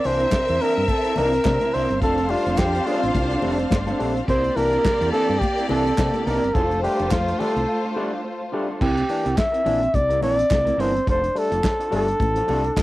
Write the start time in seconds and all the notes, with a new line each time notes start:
Already playing: C4 A#4 E5
0.04 C2 E3 A#3 D4 C5, muted clean electric guitar stroke, open hi-hat
0.19 A#3 C4 D4 E4 A#4, closed hi-hat
0.31 C3, muted clean electric guitar stroke, kick, snare, clap, closed hi-hat, high conga
0.47 E2 C4 E4 A#4, closed hi-hat
0.60 E3 A#3 C4 D4 E4 A#4, open hi-hat
0.76 G2 A#3 D4, muted clean electric guitar stroke, closed hi-hat
0.88 A4, muted clean electric guitar stroke, kick, closed hi-hat, muted conga
1.04 C4 E4 A#4, closed hi-hat
1.16 C2 E3 A#3 C4 D4 E4 A#4, open hi-hat, muted conga, low conga
1.32 muted clean electric guitar stroke, closed hi-hat
1.45 C3 A#3 D4, kick, snare, clap, closed hi-hat, high conga
1.60 C3 C4 E4 A#4, closed hi-hat, high conga
1.73 C2 A#3 C4 D4 E4 A#4 C5, open hi-hat
1.90 G1, muted clean electric guitar stroke, closed hi-hat
1.99 F1 F3 C4 D4 A4 C5 F5, kick, closed hi-hat
2.18 muted clean electric guitar stroke, closed hi-hat
2.29 G3 A3 D4 F4, muted clean electric guitar stroke, open hi-hat, muted conga
2.46 F1 A3 C4 D4 A4, closed hi-hat
2.57 F2 G4, muted clean electric guitar stroke, kick, snare, clap, closed hi-hat, high conga
2.74 C4 D4 A4, closed hi-hat
2.86 G3 A3 C4 D4 F4 A4, open hi-hat
3.03 A1, muted clean electric guitar stroke, closed hi-hat
3.14 C2, muted clean electric guitar stroke, kick, closed hi-hat, muted conga
3.31 C4 D4 A4, closed hi-hat
3.42 F1 G3 A3 C4 D4 A4, open hi-hat, muted conga, low conga
3.59 muted clean electric guitar stroke, closed hi-hat
3.71 G1, muted clean electric guitar stroke, kick, snare, clap, closed hi-hat, high conga
3.87 C4 D4 A4, closed hi-hat, high conga
3.99 A#1 G3 A3 C4 D4 A4, open hi-hat
4.16 muted clean electric guitar stroke, closed hi-hat
4.27 C2 C3 A#3 C4 E4 G4 A#4 C5 D5, kick, closed hi-hat
4.44 muted clean electric guitar stroke, closed hi-hat
4.56 C2 E3 A#3 D4 A#4, muted clean electric guitar stroke, open hi-hat, muted conga
4.72 A#3 C4 D4 E4 A#4, closed hi-hat
4.85 C3, kick, snare, clap, closed hi-hat, high conga
5.01 E2 C4 E4 A#4, closed hi-hat
5.12 E3 A#3 C4 D4 E4 A4 A#4, open hi-hat
5.28 G2 A#3 D4, muted clean electric guitar stroke, closed hi-hat
5.39 G4, kick, closed hi-hat
5.43 muted conga
5.57 C4 E4 A#4, closed hi-hat
5.68 C2 E3 A#3 C4 D4 E4 A4 A#4, open hi-hat, muted conga, low conga
5.86 muted clean electric guitar stroke, closed hi-hat
5.98 C3 A#3 D4, muted clean electric guitar stroke, kick, snare, clap, closed hi-hat, high conga
6.13 C3 C4 E4 A#4, closed hi-hat, high conga
6.26 C2 A#3 C4 D4 E4 A#4, open hi-hat
6.43 G1, muted clean electric guitar stroke, closed hi-hat
6.54 F1 F3 A3 D4 F4 A4 C5, kick, closed hi-hat
6.70 muted clean electric guitar stroke, closed hi-hat
6.83 G3 A3 D4 G4, muted clean electric guitar stroke, open hi-hat
6.99 F1 A3 D4 F4 A4, closed hi-hat
7.11 F2 F4, muted clean electric guitar stroke, kick, snare, clap, closed hi-hat, high conga
7.28 D4 F4 A4, closed hi-hat
7.39 G3 A3 D4 F4 A4, open hi-hat, low conga
7.56 C2, muted clean electric guitar stroke, closed hi-hat
7.68 muted clean electric guitar stroke
7.84 D4 F4 A4
7.96 G3 A3 D4 F4 A4
8.13 muted clean electric guitar stroke
8.24 muted clean electric guitar stroke
8.41 muted clean electric guitar stroke
8.52 G3 A3 D4 F4 A4
8.68 D4 F4 A4
8.81 C2 C3 C4 E4 G4 A#4, kick, crash
8.97 A#3 D4, muted clean electric guitar stroke, closed hi-hat
9.09 E3 A#3 D4, muted clean electric guitar stroke, open hi-hat, muted conga
9.24 C2 C4 E4 A#4, closed hi-hat
9.37 E5, muted clean electric guitar stroke, kick, snare, clap, closed hi-hat, high conga
9.52 C4 E4 A#4, closed hi-hat
9.64 A#1 E3 A#3 C4 D4 E4 A#4, open hi-hat, low conga
9.81 muted clean electric guitar stroke, closed hi-hat
9.94 C2 A#3 D4 D5, muted clean electric guitar stroke, kick, closed hi-hat, muted conga
10.09 C3 C4 E4 A#4, closed hi-hat
10.21 A#1 E3 A#3 C4 D4 E4 A#4 D5, open hi-hat, muted conga, low conga
10.37 muted clean electric guitar stroke, closed hi-hat
10.50 C2 A#3 D4, muted clean electric guitar stroke, kick, snare, clap, closed hi-hat, high conga
10.65 C3 C4 E4 A#4, closed hi-hat, high conga
10.78 G1 E3 A#3 C4 D4 E4 A#4 C5, open hi-hat
10.94 muted clean electric guitar stroke, closed hi-hat
11.06 F1 F3 D4 F4 A4 C5, kick, closed hi-hat
11.23 A3 D4, muted clean electric guitar stroke, closed hi-hat
11.34 G3 A3 D4, muted clean electric guitar stroke, open hi-hat
11.38 A4
11.50 F1 D4 F4 A4, closed hi-hat
11.63 muted clean electric guitar stroke, kick, snare, clap, closed hi-hat, high conga
11.78 D4 F4 A4, closed hi-hat
11.91 G1 G3 A3 D4 F4 A4, open hi-hat
11.96 A4
12.08 muted clean electric guitar stroke, closed hi-hat
12.20 A1 A3 D4, muted clean electric guitar stroke, kick, closed hi-hat, muted conga
12.35 F3 D4 F4 A4, closed hi-hat
12.47 C2 G3 A3 D4 F4 A4, open hi-hat, muted conga, low conga
12.64 muted clean electric guitar stroke, closed hi-hat
12.76 F2 F3, muted clean electric guitar stroke, kick, snare, clap, closed hi-hat, high conga